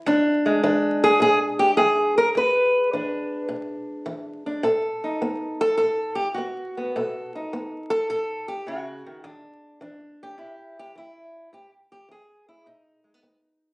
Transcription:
0.06 0.59 E2 medium
0.06 0.63 D4 medium
0.46 4.65 G#3 soft
0.63 1.17 E3 medium
0.63 2.33 D4 soft
1.04 1.21 G#4 loud
1.20 1.73 B2 medium
1.20 1.38 G#4 loud
1.59 1.70 G4 medium
1.77 2.31 E3 medium
1.77 2.16 G#4 loud
2.18 2.28 A#4 medium
2.35 2.88 E2 medium
2.35 3.51 B4 loud
2.93 3.46 E3 medium
2.93 4.45 D4 soft
3.49 4.03 B2 medium
4.06 4.60 E3 medium
4.46 4.62 D4 soft
4.63 5.17 B2 medium
4.63 5.60 A4 medium
5.04 6.34 D#4 soft
5.22 5.75 B3 medium
5.61 5.76 A4 loud
5.77 6.33 B2 medium
5.77 6.15 A4 loud
6.15 6.27 G4 loud
6.34 6.76 B3 medium
6.34 7.31 F#4 medium
6.77 7.00 B3 soft
6.96 7.48 B2 medium
6.96 7.89 A4 medium
7.35 8.67 D#4 soft
7.53 8.06 B3 medium
7.90 8.09 A4 loud
8.10 8.62 B2 medium
8.10 8.48 A4 loud
8.48 8.66 G4 loud
8.67 9.05 C#3 medium
8.67 9.24 F#4 medium
9.06 9.24 D#3 medium
9.24 9.77 E2 medium
9.24 9.81 D4 medium
9.81 10.34 E3 medium
9.81 10.36 D4 soft
10.23 10.78 G4 loud
10.38 10.91 A2 medium
10.38 10.96 E4 soft
10.79 10.96 G4 loud
10.95 11.48 E3 medium
10.95 11.53 E4 medium
11.53 12.06 E2 medium
11.53 11.70 G4 medium
11.92 12.10 G4 medium
12.09 12.62 E3 medium
12.09 12.48 G#4 loud
12.48 12.67 E4 medium
12.66 13.19 B2 medium
12.66 13.73 D#4 medium
13.04 13.14 G#3 soft
13.14 13.22 B3 soft
13.23 13.73 B3 medium

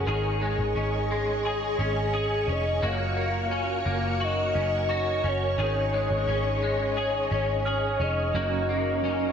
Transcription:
0.00 0.14 A#3 medium
0.00 0.75 C#4 medium
0.00 2.53 G#4 medium
0.00 9.32 C#5 medium
0.00 9.32 C#6 medium
0.07 0.56 G#1 medium
0.07 2.83 D#3 medium
0.07 2.80 G#4 medium
0.07 1.44 G#4 medium
0.07 2.80 D#5 medium
0.41 1.10 G#3 medium
0.58 0.75 G#1 medium
0.75 1.75 G#1 medium
0.75 1.79 C#4 medium
1.11 2.82 G#3 medium
1.45 2.12 G#4 medium
1.79 2.45 G#1 medium
1.79 2.48 C#4 medium
2.14 2.82 G#4 medium
2.48 2.81 F1 medium
2.48 3.51 C#4 medium
2.52 2.88 D#5 medium
2.82 3.82 F#1 medium
2.82 3.16 A#3 medium
2.82 5.55 F#4 medium
2.82 4.19 F#4 medium
2.82 5.56 A#4 medium
2.86 4.25 F5 loud
3.17 3.84 A#3 medium
3.51 4.54 C#4 medium
3.85 4.52 F#1 medium
3.85 5.65 A#3 medium
4.20 4.88 F#4 medium
4.20 5.29 D#5 loud
4.55 5.21 F#1 medium
4.55 5.24 C#4 medium
4.89 5.58 F#4 medium
4.89 5.89 C#6 medium
5.24 5.57 F#1 medium
5.24 6.27 C#4 medium
5.24 8.04 C#5 loud
5.58 6.07 G#1 medium
5.58 8.34 D#3 medium
5.58 8.32 G#4 medium
5.58 6.96 G#4 medium
5.58 8.32 D#5 medium
5.93 6.61 G#3 medium
6.10 6.27 G#1 medium
6.27 7.27 G#1 medium
6.27 7.30 C#4 medium
6.63 8.34 G#3 medium
6.97 7.65 G#4 medium
7.31 7.97 G#1 medium
7.31 8.00 C#4 medium
7.65 8.35 G#4 medium
7.65 8.65 F6 medium
8.00 8.33 F1 medium
8.00 9.03 C#4 soft
8.00 9.32 D#5 loud
8.33 9.32 F#1 medium
8.33 9.01 F#3 medium
8.33 8.68 A#3 medium
8.33 9.03 C#4 medium
8.33 9.32 F#4 medium
8.33 9.04 F#4 medium
8.33 9.32 A#4 medium
8.33 9.05 A#4 medium
8.69 9.32 A#3 medium
9.02 9.32 F#3 medium
9.02 9.32 C#4 medium
9.02 9.32 F#4 medium
9.06 9.32 A#4 medium

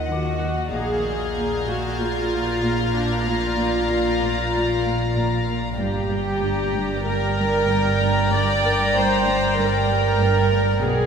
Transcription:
0.00 0.70 D#2 soft
0.00 0.74 D#2 medium
0.00 0.69 D#3 medium
0.00 0.69 D#5 soft
0.00 0.38 F#5 soft
0.00 0.69 F#5 medium
0.00 0.70 F#5 soft
0.10 0.29 D#3 medium
0.10 0.70 F#4 medium
0.10 1.97 D6 soft
0.41 0.60 D#3 soft
0.72 5.82 A#1 medium
0.72 5.79 A#1 medium
0.72 5.78 A#2 medium
0.72 0.92 A#2 medium
0.72 1.68 G#4 medium
0.72 5.75 D5 medium
0.72 5.75 F5 medium
0.72 5.75 A#5 medium
0.72 5.44 F6 soft
0.72 4.81 G6 soft
0.72 4.18 G#6 soft
1.05 1.24 A#2 soft
1.37 1.56 A#2 soft
1.67 1.87 A#2 medium
1.67 2.00 F#4 medium
1.67 3.53 F5 soft
1.99 2.18 A#2 soft
1.99 2.94 F4 medium
2.31 2.50 A#3 soft
2.63 2.82 A#2 medium
2.94 3.14 A#2 soft
2.94 3.25 D4 medium
3.26 3.46 A#2 medium
3.26 3.89 F4 medium
3.58 3.77 A#2 soft
3.90 4.09 A#2 medium
3.90 4.83 F4 medium
4.22 4.41 A#2 medium
4.54 4.73 A#2 medium
4.85 5.04 A#3 medium
5.17 5.35 A#2 medium
5.48 5.67 A#2 medium
5.78 10.80 G1 medium
5.78 10.86 G1 medium
5.78 10.80 G2 medium
5.78 5.98 G2 medium
5.78 7.01 G4 medium
5.78 10.80 D5 medium
5.78 10.80 G5 medium
5.78 10.80 A#5 medium
6.10 6.29 G2 medium
6.42 6.61 G2 medium
6.73 6.92 G2 medium
7.06 7.25 G2 medium
7.06 8.32 A#4 loud
7.38 7.56 G3 medium
7.68 7.87 G2 medium
8.00 8.19 G2 medium
8.31 8.51 G2 medium
8.31 8.93 D5 loud
8.64 8.82 G2 medium
8.64 10.50 A#4 medium
8.95 9.14 G2 medium
8.95 9.58 C5 medium
9.27 9.45 G2 medium
9.57 9.76 G2 medium
9.57 10.84 A#4 loud
9.89 10.08 G3 medium
10.20 10.39 G2 medium
10.52 10.71 G2 medium
10.84 11.06 B1 medium
10.84 11.03 B2 medium
10.84 11.06 B2 medium
10.84 11.06 G#4 loud
10.84 11.06 D5 medium
10.84 11.06 F#5 medium
10.84 11.06 D6 soft

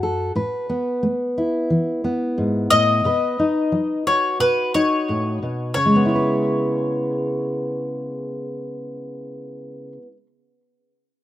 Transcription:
0.00 0.30 F#2 medium
0.00 0.28 C#4 medium
0.00 0.31 F#4 medium
0.00 0.31 A4 medium
0.35 0.95 A2 medium
0.35 3.06 B4 medium
0.69 2.04 B3 soft
1.03 1.63 A3 medium
1.38 3.01 E4 soft
1.70 2.30 E3 medium
2.04 3.38 B3 soft
2.38 2.71 G#2 medium
2.70 3.04 A2 soft
2.70 4.07 D#5 medium
3.05 3.65 B2 medium
3.05 5.72 B4 medium
3.39 4.74 D#4 soft
3.72 4.33 F#3 soft
4.07 5.71 F#4 soft
4.07 4.40 C#5 medium
4.40 5.00 B2 soft
4.40 4.74 B4 medium
4.74 5.71 D#4 soft
4.74 5.37 C#5 medium
5.09 5.42 A2 soft
5.43 5.76 B2 soft
5.74 9.97 C#3 soft
5.74 9.92 C#5 medium
5.86 10.02 G#3 soft
5.96 10.07 B3 soft
6.05 10.12 E4 soft
6.15 10.17 B4 soft

